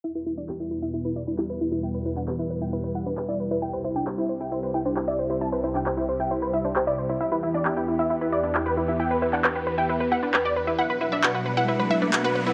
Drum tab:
CP |----x-------x---|---xx-------x---|----x-------x---|---xx-------x---|

CP |----x-------x---|---xx-------x---|----x-------x---|